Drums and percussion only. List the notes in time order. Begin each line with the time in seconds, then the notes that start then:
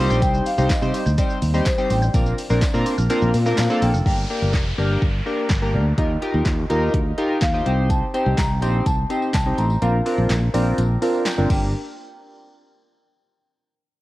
0.10 tambourine, shaker
0.22 kick, closed hi-hat, tambourine, shaker
0.34 shaker
0.46 open hi-hat, tambourine, shaker
0.58 shaker
0.69 kick, snare, clap, closed hi-hat, tambourine, shaker
0.82 shaker
0.94 open hi-hat, tambourine, shaker
1.06 shaker
1.18 kick, closed hi-hat, tambourine, shaker
1.30 tambourine, shaker
1.42 open hi-hat, tambourine, shaker
1.54 shaker
1.65 kick, snare, clap, closed hi-hat, tambourine, shaker
1.78 shaker
1.90 open hi-hat, tambourine, shaker
2.02 shaker
2.14 kick, closed hi-hat, tambourine, shaker
2.26 tambourine, shaker
2.38 open hi-hat, tambourine, shaker
2.50 shaker
2.61 kick, snare, clap, closed hi-hat, tambourine, shaker
2.74 shaker
2.86 open hi-hat, tambourine, shaker
2.98 shaker
3.10 closed hi-hat, tambourine, shaker
3.22 shaker
3.34 open hi-hat, tambourine, shaker
3.46 shaker
3.57 snare, clap, closed hi-hat, tambourine, shaker
3.70 shaker
3.82 open hi-hat, tambourine, shaker
3.94 shaker
4.06 kick
4.53 kick, snare, clap
5.02 kick
5.49 kick, snare, clap
5.98 kick, closed hi-hat
6.22 closed hi-hat
6.45 kick, snare, clap, closed hi-hat
6.70 closed hi-hat
6.94 kick, closed hi-hat
7.18 closed hi-hat
7.41 kick, snare, clap, closed hi-hat
7.66 closed hi-hat
7.90 kick, closed hi-hat, tambourine
8.14 closed hi-hat, tambourine
8.37 kick, snare, clap, closed hi-hat, tambourine
8.62 closed hi-hat, tambourine
8.86 kick, closed hi-hat, tambourine
9.10 closed hi-hat, tambourine
9.22 tambourine
9.33 kick, snare, clap, closed hi-hat, tambourine
9.58 closed hi-hat, tambourine
9.70 tambourine
9.82 closed hi-hat, tambourine
10.06 open hi-hat, tambourine
10.29 snare, clap, closed hi-hat, tambourine
10.54 open hi-hat, tambourine
10.78 closed hi-hat, tambourine
11.02 open hi-hat, tambourine
11.14 tambourine
11.25 snare, clap, closed hi-hat, tambourine
11.50 kick, crash, tambourine